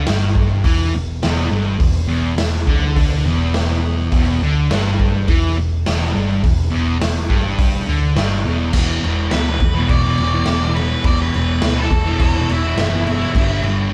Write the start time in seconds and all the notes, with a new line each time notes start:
0.07 G1 G2, snare, open hi-hat
0.35 kick
0.64 E2 E3, kick, open hi-hat
0.95 E1 E2
1.22 E1 E2, snare, open hi-hat
1.51 G1 G2
1.79 E1 E2, kick, open hi-hat
2.07 E1 E2
2.37 E1 E2, snare, open hi-hat
2.66 D2 D3, kick
2.96 kick, open hi-hat
3.24 E1 E2
3.54 snare, open hi-hat
4.12 E1 E2, kick, open hi-hat
4.41 D2 D3
4.71 G1 G2, snare, open hi-hat
5.00 kick
5.28 E2 E3, kick, open hi-hat
5.57 E1 E2
5.86 E1 E2, snare, open hi-hat
6.14 G1 G2
6.43 E1 E2, kick, open hi-hat
6.71 E2
6.75 E1
6.99 E1 E2, snare, open hi-hat
7.29 G1 G2, kick
7.59 kick, open hi-hat
7.86 D2 D3
8.15 G1 G2, snare, open hi-hat
8.44 E1 E2
8.73 E1 E2 B2, kick, crash
8.78 E3
9.01 E1 E2 B2, crash
9.06 E3
9.31 D2 E2 B2 B4, snare, crash
9.36 E3
9.45 E3
9.50 B2
9.60 E1, muted distorted electric guitar stroke, kick, crash
9.75 E3
9.79 B2
9.89 E1 D5, kick, crash
10.05 E3
10.09 B2
10.18 E1 E2, crash
10.22 B2 E3
10.34 E3
10.39 B2
10.46 E1 E2, snare, crash
10.51 B2 E3
10.61 E3
10.67 B2
10.75 E2 B4, crash
10.81 B2 E3
11.04 E1 E2 D5, kick, crash
11.08 B2 E3
11.22 B4
11.34 E1 E2 B2, crash
11.39 E3
11.62 D2 E2 B2, snare, crash
11.67 E3
11.76 E3
11.80 B2 A4
11.90 E1, muted distorted electric guitar stroke, kick, crash
12.05 E3
12.10 B2
12.20 E1, kick, crash
12.34 E3
12.39 B2
12.48 E1 E2 B2, crash
12.53 E3 E4
12.61 E3
12.66 B2
12.76 F#1 E2 B2, snare, crash
12.80 E3
12.89 E3
12.95 B2
13.05 E2 B2, crash
13.09 E3
13.34 G1 G2 D3, kick, crash
13.39 G3
13.63 G1 G2 D3, crash
13.69 G3